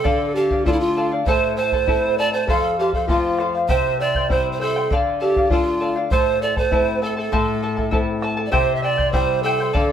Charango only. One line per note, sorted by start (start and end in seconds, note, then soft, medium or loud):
0.04 0.34 A4 medium
0.04 0.35 D5 medium
0.04 0.35 F5 medium
0.36 0.51 A4 soft
0.36 0.51 D5 soft
0.36 0.50 F5 medium
0.51 0.66 D5 soft
0.51 0.66 F5 soft
0.66 0.95 A4 medium
0.66 0.96 D5 medium
0.66 0.96 F5 medium
0.97 1.12 A4 medium
0.97 1.12 D5 medium
0.97 1.10 F5 medium
1.12 1.27 D5 soft
1.12 1.27 F5 soft
1.28 1.57 E4 medium
1.28 1.57 A4 medium
1.28 1.57 C5 medium
1.28 1.56 E5 medium
1.28 1.58 A5 medium
1.57 1.73 E4 soft
1.57 1.73 A4 medium
1.57 1.72 E5 medium
1.57 1.72 A5 medium
1.73 1.87 E4 soft
1.73 1.88 A4 soft
1.73 1.88 A5 soft
1.88 2.18 E4 medium
1.88 2.18 A4 medium
1.88 2.17 E5 soft
1.88 2.19 A5 medium
2.18 2.33 E4 medium
2.18 2.34 A4 medium
2.18 2.33 E5 soft
2.18 2.32 A5 medium
2.34 2.49 E4 soft
2.34 2.48 A4 soft
2.34 2.48 A5 soft
2.49 2.78 A4 medium
2.49 2.78 C5 medium
2.49 2.79 F5 medium
2.79 2.94 A4 medium
2.79 2.94 C5 soft
2.79 2.93 F5 medium
2.95 3.09 C5 soft
2.95 3.09 F5 soft
3.09 3.38 A4 soft
3.09 3.39 C5 medium
3.09 3.40 F5 medium
3.39 3.54 A4 medium
3.39 3.54 C5 medium
3.39 3.54 F5 medium
3.55 3.69 C5 soft
3.55 3.69 F5 soft
3.69 3.99 E4 medium
3.69 4.00 G4 medium
3.69 4.00 C5 medium
3.69 3.98 E5 medium
3.69 4.00 G5 medium
4.00 4.15 E4 medium
4.00 4.15 C5 medium
4.00 4.15 E5 soft
4.00 4.15 G5 medium
4.16 4.30 E4 soft
4.16 4.30 C5 soft
4.16 4.30 G5 soft
4.31 4.60 E4 medium
4.31 4.60 C5 medium
4.31 4.59 E5 soft
4.31 4.61 G5 medium
4.60 4.76 E4 medium
4.60 4.76 C5 medium
4.60 4.75 E5 medium
4.60 4.75 G5 medium
4.76 4.92 E4 soft
4.76 4.91 C5 soft
4.76 4.91 G5 medium
4.92 5.19 A4 medium
4.92 5.20 D5 medium
4.92 5.21 F5 medium
5.21 5.36 A4 soft
5.21 5.36 D5 medium
5.21 5.36 F5 medium
5.37 5.52 D5 soft
5.37 5.51 F5 soft
5.52 5.79 A4 soft
5.52 5.80 D5 soft
5.52 5.81 F5 medium
5.80 5.96 A4 medium
5.80 5.96 D5 medium
5.80 5.95 F5 medium
5.96 6.12 D5 soft
5.96 6.11 F5 soft
6.12 6.41 E4 medium
6.12 6.41 A4 medium
6.12 6.42 C5 medium
6.12 6.40 E5 medium
6.12 6.42 A5 medium
6.42 6.57 E4 medium
6.42 6.56 A4 medium
6.42 6.57 E5 soft
6.42 6.56 A5 medium
6.57 6.71 E4 soft
6.57 6.71 A4 soft
6.57 6.72 A5 soft
6.72 7.01 E4 medium
6.72 7.01 A4 medium
6.72 7.00 E5 medium
6.72 7.02 A5 medium
7.02 7.17 E4 medium
7.02 7.17 A4 medium
7.02 7.17 E5 medium
7.02 7.15 A5 medium
7.17 7.31 E4 soft
7.17 7.31 A4 soft
7.17 7.32 A5 soft
7.32 7.62 E4 medium
7.32 7.62 A4 medium
7.32 7.63 C5 medium
7.32 7.62 E5 medium
7.32 7.63 A5 medium
7.63 7.77 E4 medium
7.63 7.77 A4 soft
7.63 7.78 E5 soft
7.63 7.76 A5 soft
7.77 7.91 E4 soft
7.77 7.91 A4 soft
7.77 7.92 A5 soft
7.91 8.22 E4 medium
7.91 8.22 A4 medium
7.91 8.21 E5 medium
7.91 8.23 A5 medium
8.22 8.37 E4 medium
8.22 8.36 A4 medium
8.22 8.38 E5 medium
8.22 8.36 A5 medium
8.37 8.51 E4 soft
8.37 8.52 A4 soft
8.37 8.52 A5 medium
8.51 8.82 E4 medium
8.51 8.83 G4 medium
8.51 8.83 C5 medium
8.51 8.81 E5 medium
8.51 8.83 G5 medium
8.82 8.97 E4 soft
8.82 8.97 C5 soft
8.82 8.98 E5 soft
8.82 8.96 G5 medium
8.98 9.12 E4 soft
8.98 9.12 C5 soft
8.98 9.13 G5 soft
9.12 9.44 E4 medium
9.12 9.44 C5 medium
9.12 9.43 E5 soft
9.12 9.44 G5 medium
9.44 9.60 E4 medium
9.44 9.60 C5 medium
9.44 9.59 E5 medium
9.44 9.59 G5 medium
9.60 9.73 E4 soft
9.60 9.73 C5 soft
9.60 9.75 G5 soft
9.73 9.92 A4 medium
9.73 9.92 D5 medium
9.73 9.92 F5 medium